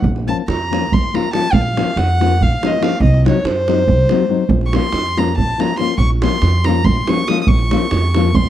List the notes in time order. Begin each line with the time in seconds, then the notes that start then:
0.02 A#1, davul low
0.16 davul high
0.27 F3 A#3 C#4 F4 A5
0.48 F2 A#5, davul high
0.71 F3 A#3 C#4 F4, davul high
0.92 A#1 C6, davul low
1.04 davul high
1.13 F3 A#3 C#4 F4 A#5, davul high
1.33 F3 A#3 C#4 F4 A5, davul high
1.53 A#1 F5, davul low
1.65 davul high
1.77 F3 A#3 C#4 F4, davul high
1.96 F2 F#5, davul high
2.20 F3 A#3 C#4 F4, davul high
2.40 A#1 F5, davul low
2.52 davul high
2.63 F3 A#3 C#4 F4 D#5, davul high
2.81 F3 A#3 C#4 F4 F5, davul high
3.00 C2 D#5, davul low
3.14 davul high
3.25 F#3 C4 D#4 F#4 C#5, davul high
3.44 F#2 C5, davul high
3.68 F#3 C4 D#4 F#4, davul high
3.87 C2, davul low
3.99 davul high
4.09 F#3 C4 D#4 F#4, davul high
4.29 F#3 C4 D#4 F#4
4.49 A#1, davul low
4.61 davul high
4.66 C#6
4.73 F3 A#3 C#4 F4 C6, davul high
4.83 davul high
4.92 F2, davul high
5.17 F3 A#3 C#4 F4 A#5, davul high
5.28 davul high
5.38 A#1 A5, davul low
5.49 davul high
5.58 F3 A#3 C#4 F4 A#5, davul high
5.68 davul high
5.77 F3 A#3 C#4 F4 C6, davul high
5.88 davul high
5.98 A#1 C#6, davul low
6.10 davul high
6.22 F3 A#3 C#4 F4 C6, davul high
6.42 F2, davul high
6.64 F3 A#3 C#4 A#5, davul high
6.69 F4
6.84 A#1 C6, davul low
6.97 davul high
7.07 F3 A#3 C#4 F4 C#6, davul high
7.27 F3 A#3 C#4 F4 D#6, davul high
7.41 D#6
7.47 A#1 C#6, davul low
7.59 davul high
7.71 F3 A#3 C#4 F4, davul high
7.91 F2, davul high
8.14 F3 A#3 C#4 F4, davul high
8.35 A#1 C6, davul low
8.46 davul high